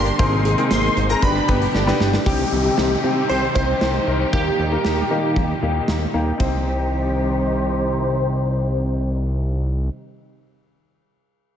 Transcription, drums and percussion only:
0.06 closed hi-hat medium
0.19 kick loud
0.19 closed hi-hat medium
0.45 closed hi-hat medium
0.58 closed hi-hat medium
0.71 snare loud
0.71 closed hi-hat medium
0.97 closed hi-hat medium
1.09 closed hi-hat medium
1.22 kick medium
1.22 closed hi-hat medium
1.48 kick loud
1.48 closed hi-hat medium
1.62 closed hi-hat medium
1.74 snare medium
1.87 snare medium
2.00 snare loud
2.13 snare loud
2.26 kick loud
2.78 snare loud
3.56 kick medium
3.81 snare loud
4.33 kick loud
4.85 snare loud
5.36 kick medium
5.88 snare loud
6.40 kick medium
6.40 ride medium

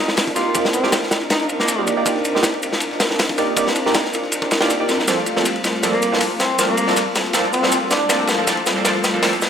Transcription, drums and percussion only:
0.08 snare medium
0.17 snare loud
0.17 open hi-hat medium
0.17 ride loud
0.28 kick medium
0.36 snare soft
0.36 ride medium
0.36 shaker medium
0.54 kick loud
0.54 ride medium
0.54 shaker medium
0.65 snare soft
0.65 snare medium
0.73 ride medium
0.73 shaker medium
0.83 snare soft
0.92 snare loud
0.92 ride loud
0.92 shaker medium
1.03 snare soft
1.11 snare loud
1.11 ride medium
1.11 shaker medium
1.21 snare soft
1.21 ride soft
1.30 snare medium
1.30 ride medium
1.30 shaker medium
1.40 snare soft
1.40 ride soft
1.49 ride medium
1.49 shaker medium
1.60 snare medium
1.68 snare loud
1.68 ride medium
1.68 shaker medium
1.87 ride medium
1.87 shaker medium
2.06 kick loud
2.06 ride medium
2.06 shaker medium
2.16 snare soft
2.25 ride medium
2.25 shaker medium
2.36 snare soft
2.43 snare loud
2.43 ride medium
2.43 shaker medium
2.54 ride soft
2.62 ride medium
2.62 shaker medium
2.73 snare soft
2.73 snare medium
2.80 ride medium
2.80 shaker medium
2.91 snare medium
3.00 snare loud
3.00 ride medium
3.00 shaker medium
3.10 snare medium
3.19 snare loud
3.19 open hi-hat medium
3.19 ride medium
3.29 kick loud
3.38 snare soft
3.38 ride medium
3.38 shaker medium
3.57 kick loud
3.57 ride loud
3.57 shaker medium
3.67 snare soft
3.67 snare medium
3.76 ride medium
3.76 shaker medium
3.86 snare soft
3.94 snare loud
3.94 ride medium
3.94 shaker medium
4.04 snare soft
4.13 ride medium
4.13 shaker medium
4.23 snare soft
4.32 ride medium
4.32 shaker medium
4.42 kick loud
4.42 snare soft
4.51 snare loud
4.51 ride medium
4.51 shaker medium
4.61 snare loud
4.61 ride medium
4.70 snare loud
4.70 ride medium
4.70 shaker medium
4.89 snare soft
4.89 ride medium
4.89 shaker medium
4.99 snare soft
5.08 snare medium
5.08 ride medium
5.08 shaker medium
5.18 snare soft
5.26 ride medium
5.26 shaker medium
5.36 snare soft
5.45 snare loud
5.45 ride medium
5.45 shaker medium
5.56 ride soft
5.64 snare soft
5.64 ride medium
5.64 shaker medium
5.74 snare soft
5.83 snare soft
5.83 ride medium
5.83 shaker medium
5.93 snare medium
6.02 ride medium
6.02 shaker medium
6.13 snare medium
6.21 snare loud
6.21 open hi-hat medium
6.21 ride medium
6.40 snare medium
6.40 ride medium
6.40 shaker medium
6.59 snare medium
6.59 ride medium
6.59 shaker medium
6.69 snare soft
6.77 ride medium
6.77 shaker medium
6.88 snare medium
6.96 snare loud
6.96 ride medium
6.96 shaker medium
7.15 snare medium
7.15 ride medium
7.15 shaker medium
7.25 snare soft
7.25 ride soft
7.33 snare medium
7.33 ride medium
7.33 shaker medium
7.44 snare soft
7.44 ride soft
7.53 ride medium
7.53 shaker medium
7.63 snare medium
7.72 snare loud
7.72 ride medium
7.72 shaker medium
7.90 snare medium
7.90 ride medium
7.90 shaker medium
8.09 snare medium
8.09 ride medium
8.09 shaker medium
8.20 snare medium
8.27 snare medium
8.27 ride medium
8.27 shaker medium
8.47 snare loud
8.47 snare medium
8.47 ride medium
8.47 shaker medium
8.57 ride soft
8.66 snare medium
8.66 ride medium
8.66 shaker medium
8.76 snare soft
8.85 snare medium
8.85 ride medium
8.85 shaker medium
8.95 snare medium
9.04 snare medium
9.04 ride medium
9.04 shaker medium
9.22 snare loud
9.22 open hi-hat medium
9.22 ride medium
9.33 ride medium
9.41 snare medium
9.41 shaker medium

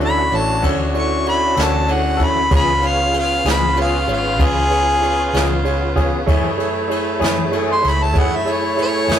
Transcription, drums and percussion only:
0.01 ride medium
0.32 ride medium
0.63 kick medium
0.63 ride medium
0.95 ride medium
1.26 ride medium
1.57 snare loud
1.57 ride medium
1.88 ride medium
2.20 kick medium
2.20 ride medium
2.51 kick loud
2.51 ride medium
2.82 ride medium
3.14 ride medium
3.45 snare loud
3.45 ride medium
3.77 ride medium
4.09 ride medium
4.39 kick medium
4.39 ride medium
4.71 ride medium
5.03 ride medium
5.34 snare loud
5.34 ride medium
5.65 ride medium
5.96 kick medium
5.96 ride medium
6.28 kick loud
6.28 ride medium
6.60 ride medium
6.91 ride medium
7.22 snare loud
7.22 ride medium
7.53 ride medium
7.84 snare soft
7.84 ride medium
8.15 kick medium
8.15 ride medium
8.47 ride medium
8.78 ride medium
9.09 snare loud
9.09 ride medium

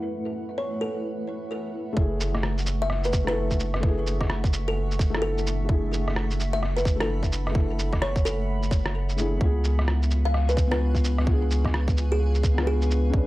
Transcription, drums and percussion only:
1.97 kick loud
2.21 shaker medium
2.35 cross-stick medium
2.43 cross-stick loud
2.58 shaker soft
2.66 shaker medium
2.90 cross-stick medium
3.04 shaker soft
3.13 kick loud
3.13 shaker medium
3.27 cross-stick loud
3.51 kick medium
3.51 shaker soft
3.60 shaker medium
3.74 cross-stick medium
3.83 kick loud
4.07 shaker medium
4.21 kick medium
4.21 cross-stick medium
4.30 cross-stick loud
4.44 kick loud
4.44 shaker soft
4.53 shaker medium
4.91 shaker soft
4.99 kick loud
4.99 shaker medium
5.15 cross-stick loud
5.38 shaker soft
5.47 shaker medium
5.69 kick loud
5.93 shaker medium
6.08 cross-stick medium
6.16 cross-stick loud
6.31 shaker soft
6.40 shaker medium
6.63 cross-stick medium
6.77 shaker soft
6.85 kick loud
6.85 shaker medium
7.00 cross-stick loud
7.23 kick medium
7.23 shaker soft
7.32 shaker medium
7.47 cross-stick medium
7.55 kick loud
7.79 shaker medium
7.93 kick medium
7.93 cross-stick medium
8.02 cross-stick loud
8.16 kick loud
8.16 shaker soft
8.26 shaker medium
8.63 shaker soft
8.71 kick loud
8.71 shaker medium
8.86 cross-stick loud
9.09 shaker soft
9.18 shaker medium
9.41 kick loud
9.64 shaker medium
9.79 cross-stick medium
9.88 cross-stick loud
10.03 shaker soft
10.11 shaker medium
10.34 cross-stick medium
10.49 shaker soft
10.57 kick loud
10.57 shaker medium
10.72 cross-stick loud
10.95 kick medium
10.95 shaker soft
11.04 shaker medium
11.18 cross-stick medium
11.27 kick loud
11.51 shaker medium
11.65 kick medium
11.65 cross-stick medium
11.74 cross-stick loud
11.88 kick loud
11.88 shaker soft
11.97 shaker medium
12.35 shaker soft
12.43 kick loud
12.43 shaker medium
12.58 cross-stick loud
12.82 shaker soft
12.91 shaker medium
13.13 kick loud

